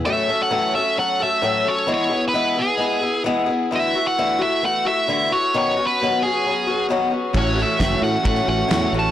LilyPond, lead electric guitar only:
\new Staff \with { instrumentName = "Lead electric guitar" } { \time 4/4 \key a \major \tempo 4 = 132 e''8. fis''8. e''8 fis''8 e''4 cis''8 | cis''8. b'8. gis'4. r4 | e''8. fis''8. e''8 fis''8 e''4 cis''8 | cis''8. b'8. gis'4. r4 |
cis''8 e''4 fis''8 fis''8 fis''4 a''8 | }